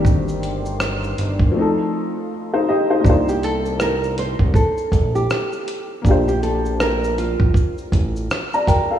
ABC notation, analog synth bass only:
X:1
M:4/4
L:1/16
Q:"Swing 16ths" 1/4=80
K:Cdor
V:1 name="Analog synth bass" clef=bass
G,,,6 G,,,2 z8 | C,,6- C,, C,, z2 B,,,2 z4 | B,,,6- B,,, B,,, z2 A,,,2 z4 |]